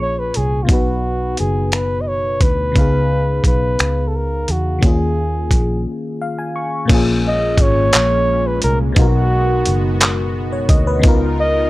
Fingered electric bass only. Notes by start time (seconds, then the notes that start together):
Already playing: A#1
0.37 C2
0.70 B1
1.40 F#1
2.42 D2
2.77 C#2
3.45 B1
3.80 C#2
4.49 E2
4.83 D#2
5.52 A#1
6.90 A#1
7.58 G#1
7.95 A#1
8.64 C2
8.98 B1
9.67 F#1
10.70 D2
11.04 C#2